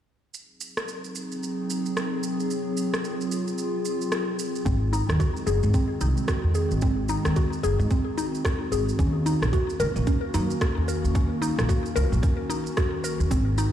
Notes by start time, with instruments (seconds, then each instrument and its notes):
0.33 ambient pad F#3 C4 D#4 G#4, shaker
0.61 shaker
0.77 cross-stick, shaker
0.88 shaker
1.04 shaker
1.15 shaker
1.32 shaker
1.43 shaker
1.70 shaker
1.86 shaker
1.97 cross-stick, shaker
2.23 shaker
2.40 shaker
2.50 ambient pad F4, shaker
2.77 shaker
2.94 cross-stick, shaker
3.04 shaker
3.21 shaker
3.32 shaker
3.48 shaker
3.58 shaker
3.85 shaker
4.01 shaker
4.12 cross-stick, shaker
4.39 shaker
4.55 shaker
4.65 upright bass G#1, ambient pad D#3 G#3 C4 F#4, synth pluck C4, kick, shaker
4.93 synth pluck D#4, shaker
5.09 upright bass D#2, cross-stick, shaker
5.20 synth pluck F#4, kick, shaker
5.37 shaker
5.47 upright bass F#1, synth pluck G#4, shaker
5.63 upright bass G#2, shaker
5.74 synth pluck C4, kick, shaker
6.01 upright bass C2, synth pluck D#4, shaker
6.17 shaker
6.28 synth pluck F#4, kick, cross-stick, shaker
6.44 udu
6.55 synth pluck G#4, shaker
6.71 upright bass G#1, shaker
6.82 synth pluck C4, kick, shaker
7.09 synth pluck D#4, shaker
7.25 upright bass D#2, cross-stick, shaker
7.36 synth pluck F#4, kick, shaker
7.53 shaker
7.63 upright bass F#1, synth pluck G#4, shaker
7.79 upright bass G#2, shaker
7.91 synth pluck C4, kick, shaker
8.18 synth pluck D#4, shaker
8.35 shaker
8.45 synth pluck F#4, kick, cross-stick, shaker
8.72 upright bass G#1, synth pluck G#4, shaker
8.89 shaker
8.98 upright bass D#2, ambient pad A#3 C#4, synth pluck C#4, kick, shaker
9.26 synth pluck D#4, shaker
9.42 upright bass A#1, cross-stick, shaker
9.53 synth pluck F#4, kick, shaker
9.70 shaker
9.80 upright bass C#2, synth pluck A#4, shaker
9.96 upright bass A#1, shaker
10.07 synth pluck C#4, kick, shaker
10.34 upright bass F#2, synth pluck D#4, shaker
10.50 shaker
10.61 synth pluck F#4, kick, cross-stick, shaker
10.78 udu
10.88 synth pluck A#4, shaker
11.04 upright bass D#2, shaker
11.15 synth pluck C#4, kick, shaker
11.42 synth pluck D#4, shaker
11.58 upright bass A#1, cross-stick, shaker
11.69 synth pluck F#4, kick, shaker
11.86 shaker
11.96 upright bass C#2, synth pluck A#4, shaker
12.12 upright bass A#1, shaker
12.23 synth pluck C#4, kick, shaker
12.50 synth pluck D#4, shaker
12.66 shaker
12.77 synth pluck F#4, kick, cross-stick, shaker
13.04 synth pluck A#4, shaker
13.20 upright bass D#2, shaker
13.31 upright bass G#1, ambient pad G#3 C4, synth pluck C4, kick, open hi-hat, shaker
13.58 synth pluck D#4, shaker